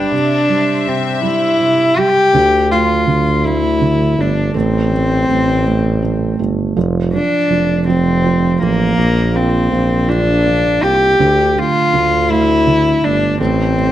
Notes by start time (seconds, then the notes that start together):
Already playing: G3 D4 G5
0.11 C3 C5 E5
0.49 G3
0.86 C3 C4
1.23 G3 E4
1.60 C3
1.97 G3 G4
2.34 D2 D3
2.71 A3 F4
3.07 D2 D3
3.45 A3 E4
3.81 D3
4.18 G1 A3 D4
4.54 A1 A3 C4
4.92 A3
5.29 A1 A3
5.65 A3
6.02 A3
6.39 G1 A3
6.76 F1 F3
7.13 F3 D4
7.50 F1 F3
7.87 F3 C4
8.24 F3
8.61 A1 F3 A#3
8.97 A#1 A#3
9.35 C4 F4
9.71 A#1 A#3
10.08 D4 F4
10.46 A#3
10.82 C2 F4 G4
11.19 D2 D3
11.56 A3 F4
11.93 D2 D3
12.30 A3 E4
12.67 D3
13.04 G1 A3 D4
13.40 A1 A3 C4
13.77 A3